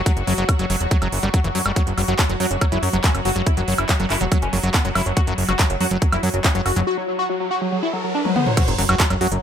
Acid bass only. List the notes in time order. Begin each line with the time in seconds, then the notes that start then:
0.06 F#3
0.27 F#3
0.38 F#3
0.59 F#3
0.70 F#3
0.91 F#3
1.02 F#3
1.23 G3
1.34 F#3
1.44 E3
1.55 F#3
1.66 G3
1.76 F#3
1.98 F#3
2.08 F#3
2.30 F#3
2.40 F#3
2.61 F#3
2.72 F#3
2.93 F#3
3.04 F#3
3.25 F#3
3.36 F#3
3.57 F#3
3.68 F#3
3.89 F#3
4.00 F#3
4.21 F#3
4.32 F#3
4.53 F#3
4.64 F#3
4.85 F#3
4.95 F#3
5.17 F#3
5.27 F#3
5.49 F#3
5.59 F#3
5.81 F#3
5.91 F#3
6.12 F#3
6.23 F#3
6.44 F#3
6.55 F#3
6.76 F#3
8.57 F#3
8.78 F#3
8.89 F#3
9.10 F#3
9.21 F#3